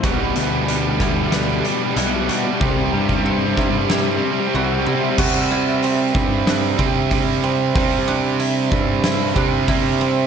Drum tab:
CC |----------------|----------------|x---------------|----------------|
HH |x-x-x-x-x-x-x-x-|----------------|----o---o---o---|o---o---o---o---|
SD |--------o-------|--------o-------|--------o-------|--------o-------|
BD |o-----o---------|o--o--o---------|o-----o---o-o---|o-----o---o-o---|